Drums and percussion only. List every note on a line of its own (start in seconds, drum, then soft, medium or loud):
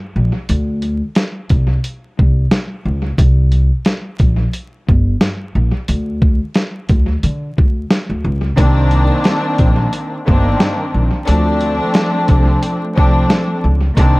0.49 closed hi-hat loud
0.82 closed hi-hat medium
1.15 snare loud
1.15 closed hi-hat medium
1.49 kick loud
1.49 closed hi-hat medium
1.84 closed hi-hat medium
2.19 kick medium
2.51 snare loud
2.51 closed hi-hat medium
3.18 kick loud
3.18 closed hi-hat loud
3.52 closed hi-hat medium
3.85 snare loud
3.85 closed hi-hat medium
4.19 kick loud
4.19 closed hi-hat medium
4.53 closed hi-hat medium
4.89 kick medium
5.21 snare loud
5.21 closed hi-hat medium
5.88 closed hi-hat loud
6.22 kick loud
6.54 snare loud
6.54 closed hi-hat medium
6.89 kick loud
6.89 closed hi-hat medium
7.23 closed hi-hat medium
7.58 kick medium
7.91 snare loud
7.91 closed hi-hat medium
8.57 kick loud
8.57 closed hi-hat loud
8.91 closed hi-hat medium
9.24 snare loud
9.24 closed hi-hat medium
9.58 kick loud
9.58 closed hi-hat medium
9.93 closed hi-hat medium
10.28 kick medium
10.60 snare loud
10.60 closed hi-hat medium
11.28 closed hi-hat loud
11.61 closed hi-hat medium
11.94 snare loud
11.94 closed hi-hat medium
12.28 kick loud
12.28 closed hi-hat medium
12.63 closed hi-hat medium
12.98 kick medium
13.30 snare loud
13.30 closed hi-hat medium
13.97 kick loud
13.97 closed hi-hat loud